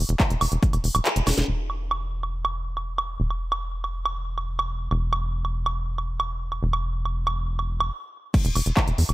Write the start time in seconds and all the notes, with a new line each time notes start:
0.09 E1, closed hi-hat
0.20 kick, clap, closed hi-hat, high woodblock
0.30 E1, closed hi-hat
0.41 E1, open hi-hat, high woodblock
0.52 E1, closed hi-hat
0.63 kick, closed hi-hat
0.73 E1, closed hi-hat, high woodblock
0.84 E1, open hi-hat
0.95 D1, closed hi-hat, high woodblock
1.05 clap, closed hi-hat
1.16 E1, closed hi-hat
1.27 E1, snare, open hi-hat, high woodblock
1.38 E1, snare, closed hi-hat
1.48 E1
1.70 high woodblock
1.91 high woodblock
2.23 high woodblock
2.45 high woodblock
2.77 high woodblock
2.98 high woodblock
3.20 E1
3.30 high woodblock
3.52 high woodblock
3.84 high woodblock
4.05 high woodblock
4.38 high woodblock
4.59 high woodblock
4.91 E1, high woodblock
5.13 high woodblock
5.45 high woodblock
5.66 high woodblock
5.98 high woodblock
6.20 high woodblock
6.52 high woodblock
6.63 E1
6.73 high woodblock
7.05 high woodblock
7.27 high woodblock
7.59 high woodblock
7.80 high woodblock
8.34 kick, closed hi-hat, crash
8.45 E1, closed hi-hat
8.55 E1, open hi-hat, high woodblock
8.66 E1, closed hi-hat
8.77 kick, clap, closed hi-hat, high woodblock
8.88 E1, closed hi-hat
8.98 E2, open hi-hat
9.09 E1, closed hi-hat, high woodblock